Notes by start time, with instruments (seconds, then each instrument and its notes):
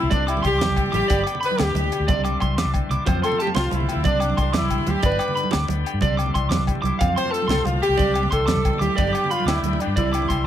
Already playing: horn section E4, tonewheel organ C5 F5
0.03 fingered electric bass C2
0.09 fingered electric bass C2, clean electric guitar C3 D4 D5, horn section D4, tonewheel organ D5 E5 C6, kick, closed hi-hat, muted conga, high conga, low conga
0.27 clean electric guitar G3 D6, horn section E4, closed hi-hat, low agogo
0.37 high conga, low conga
0.42 fingered electric bass C2, clean electric guitar E3 C6, horn section G4, kick, closed hi-hat, low agogo
0.59 fingered electric bass E2, clean electric guitar D4 D6, snare, closed hi-hat, muted conga, high conga, low conga
0.68 fingered electric bass C2
0.76 clean electric guitar G2 G3, kick, closed hi-hat, low conga, low agogo
0.86 low conga
0.92 fingered electric bass A1, clean electric guitar E4 D6, horn section G4, closed hi-hat, high conga
1.08 fingered electric bass G1, clean electric guitar D3 B3 D5, tonewheel organ G5 B5, muted clean electric guitar stroke, kick, closed hi-hat, muted conga, low conga, low agogo
1.13 clean electric guitar D4
1.19 high conga, low conga
1.24 clean electric guitar B3 D6, closed hi-hat, low agogo
1.35 low conga
1.41 clean electric guitar D3 B5, closed hi-hat
1.45 horn section B4
1.51 high conga
1.58 fingered electric bass D2, clean electric guitar G2 D6, snare, closed hi-hat, muted conga, low conga, low agogo
1.62 horn section G4
1.74 fingered electric bass D2, clean electric guitar A2, closed hi-hat, high conga
1.84 low conga
1.92 clean electric guitar B2, closed hi-hat, low agogo
2.00 fingered electric bass D2
2.07 fingered electric bass C2, clean electric guitar C3 D4 D5, tonewheel organ E5 C6, kick, closed hi-hat, muted conga, high conga, low conga
2.24 clean electric guitar G3 D6, closed hi-hat, high conga, low agogo
2.40 fingered electric bass C2, clean electric guitar E3 C6, kick, closed hi-hat, high conga, low agogo
2.56 fingered electric bass E2, clean electric guitar B3 D6, snare, closed hi-hat, high conga
2.65 fingered electric bass C2, clean electric guitar D4
2.74 clean electric guitar G2 G3, kick, closed hi-hat, low conga, low agogo
2.89 fingered electric bass C2, clean electric guitar E4 D6, closed hi-hat, low conga
3.04 clean electric guitar F2 F3 A3 C4 C5, fingered electric bass F2, tonewheel organ C5 F5 A5, kick, closed hi-hat, muted conga, low conga, low agogo
3.09 clean electric guitar F4
3.15 high conga
3.23 clean electric guitar A3 C6, horn section A4, closed hi-hat, low agogo
3.32 low conga
3.39 clean electric guitar F3 A5, horn section G4, closed hi-hat
3.47 high conga
3.55 fingered electric bass C2, horn section F4, clean electric guitar C6, muted clean electric guitar stroke, snare, closed hi-hat, muted conga, low conga, low agogo
3.71 fingered electric bass C2, clean electric guitar C3 A3, horn section E4, closed hi-hat, high conga
3.80 low conga
3.89 clean electric guitar C4, horn section E4, closed hi-hat, low agogo
3.95 fingered electric bass D2
4.02 fingered electric bass C2, clean electric guitar C3 D4 D5, tonewheel organ D5 E5 C6, kick, closed hi-hat, muted conga, high conga, low conga
4.06 horn section D4
4.20 clean electric guitar G3 D6, closed hi-hat, low agogo
4.30 high conga
4.37 fingered electric bass C2, clean electric guitar E3 C6, horn section D4, kick, closed hi-hat, low agogo
4.53 fingered electric bass E2, clean electric guitar B3 D6, horn section E4, snare, closed hi-hat, muted conga, high conga, low conga
4.61 fingered electric bass C2, clean electric guitar D4
4.69 clean electric guitar G2 G3, kick, closed hi-hat, low conga, low agogo
4.78 low conga
4.86 fingered electric bass D2, clean electric guitar E4, horn section G4, closed hi-hat, high conga
5.00 fingered electric bass G1, clean electric guitar G2 D4 D5, tonewheel organ D5 G5 B5, kick, closed hi-hat, muted conga, low conga, low agogo
5.06 horn section B4
5.12 high conga
5.19 clean electric guitar B3 D6, closed hi-hat, low agogo
5.28 low conga
5.35 clean electric guitar D3 B5, closed hi-hat
5.43 high conga
5.51 fingered electric bass D2, clean electric guitar D4 D6, snare, closed hi-hat, muted conga, low conga, low agogo
5.68 fingered electric bass D2, clean electric guitar B3, closed hi-hat, high conga
5.85 clean electric guitar G4, closed hi-hat, low agogo
5.94 fingered electric bass G2
6.01 fingered electric bass C2, clean electric guitar C3 D4 D5, tonewheel organ E5 C6, kick, closed hi-hat, muted conga, high conga, low conga
6.17 clean electric guitar G3 D6, closed hi-hat, low agogo
6.26 high conga, low conga
6.34 fingered electric bass C2, clean electric guitar E3 C6, kick, closed hi-hat, low agogo
6.49 fingered electric bass E2, clean electric guitar D4 D6, snare, closed hi-hat, muted conga, high conga, low conga
6.58 fingered electric bass C2
6.67 clean electric guitar G2 G3, kick, closed hi-hat, low conga, low agogo
6.75 low conga
6.82 fingered electric bass C2, clean electric guitar E4 D6, closed hi-hat, high conga
6.99 fingered electric bass F2, clean electric guitar F2 C4 F5, tonewheel organ C5 F5 A5, kick, closed hi-hat, muted conga, low conga, low agogo
7.08 high conga
7.16 clean electric guitar A3 C6, horn section C5, closed hi-hat, low agogo
7.25 low conga
7.31 clean electric guitar F3 A5, horn section A4, closed hi-hat
7.42 high conga
7.48 fingered electric bass C2, clean electric guitar G2 C6, horn section A4, snare, closed hi-hat, muted conga, low conga, low agogo
7.65 fingered electric bass C2, clean electric guitar A2, horn section F4, closed hi-hat, high conga
7.74 low conga
7.81 clean electric guitar B2, horn section G4, closed hi-hat, low agogo
7.89 fingered electric bass C2
7.97 fingered electric bass C2, clean electric guitar C3 D5, tonewheel organ D5 E5 C6, kick, closed hi-hat, muted conga, high conga, low conga
8.02 clean electric guitar D4
8.14 clean electric guitar G3 D6, closed hi-hat, low agogo
8.23 high conga, low conga
8.31 fingered electric bass C2, clean electric guitar E3 C6, horn section A4, kick, closed hi-hat, low agogo
8.47 fingered electric bass E2, clean electric guitar C3 D6, snare, closed hi-hat, muted conga, high conga, low conga
8.55 fingered electric bass C2
8.63 clean electric guitar B2, kick, closed hi-hat, low conga, low agogo
8.73 low conga
8.79 fingered electric bass D2, clean electric guitar A2 D6, horn section G4, closed hi-hat, high conga
8.97 fingered electric bass G1, clean electric guitar G2 D4 D5, tonewheel organ G5 B5, kick, closed hi-hat, muted conga, low conga, low agogo
9.07 high conga
9.13 clean electric guitar B3 D6, closed hi-hat, low agogo
9.24 low conga
9.30 clean electric guitar D3 B5, horn section F4, closed hi-hat
9.40 high conga, low conga
9.45 fingered electric bass D2, clean electric guitar D4 D6, horn section E4, snare, closed hi-hat, muted conga, low conga, low agogo
9.62 fingered electric bass D2, clean electric guitar G2 B3, closed hi-hat, high conga, low conga
9.73 low conga
9.80 horn section D4, clean electric guitar G4, closed hi-hat, low conga, low agogo
9.87 fingered electric bass G2
9.91 low conga
9.96 fingered electric bass C2, clean electric guitar C3 E3 G3 D4 D5, horn section E4, tonewheel organ E5 C6, kick, closed hi-hat, muted conga, high conga, low conga
10.13 clean electric guitar G3 D6, closed hi-hat, low agogo
10.22 high conga, low conga
10.29 fingered electric bass C2, clean electric guitar E3 C6, kick, closed hi-hat, low agogo
10.44 fingered electric bass E2